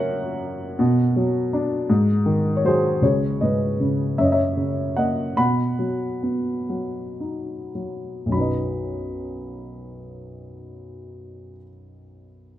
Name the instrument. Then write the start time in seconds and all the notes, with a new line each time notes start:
grand piano
Already playing: F#2 C#3 A#3 C#4 A#4 C#5 E5 F#5 A#5
0.79 B2
1.16 F#3
1.53 D4
1.90 G#2
2.26 D#3
2.57 C#5
2.65 F#3 G#4 C5
3.01 C#2 G#4 C#5
3.41 G#2 B4 D#5
3.80 C#3
4.18 F#2 C#5 E5
4.24 D#5
4.32 C#5 E5
4.57 C#3
4.97 A#3 D#5 F#5
5.37 B2 F#5 B5
5.79 F#3
6.23 B3
6.69 F#3
7.20 D#4
7.75 F#3
8.26 B1 F#2
8.32 F#3 D#4 B5
8.38 B4 D#5